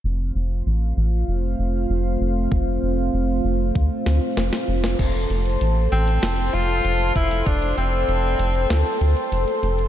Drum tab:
CC |----------------|----------------|x---------------|----------------|
HH |----------------|----------------|x-xxx-xxx-xxx-xx|xxxxx-xxx-xxxxxx|
SD |----------------|----------o-oo-o|--------o-------|--------o-------|
BD |----------------|o-------o-------|o-------------o-|o---------------|